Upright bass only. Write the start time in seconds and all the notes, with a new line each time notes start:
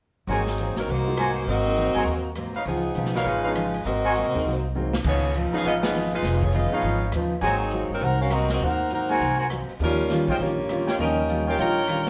0.27 G#1
0.76 G1
0.87 C2
1.47 G#1
1.94 G1
2.05 D#2
2.54 muted upright bass stroke
2.65 C#2
2.95 B1
3.25 G#1
3.85 G#1
4.25 C2
4.35 D#2
4.44 C2
5.04 C#2
5.53 muted upright bass stroke
5.63 G#1
6.22 F1
6.82 G#1
7.12 D#2
7.41 G#1
7.89 G1
8.01 C2
8.61 D#2
9.20 C2
9.69 muted upright bass stroke
9.80 D#2
10.39 A#1
10.99 D#2
11.58 A#1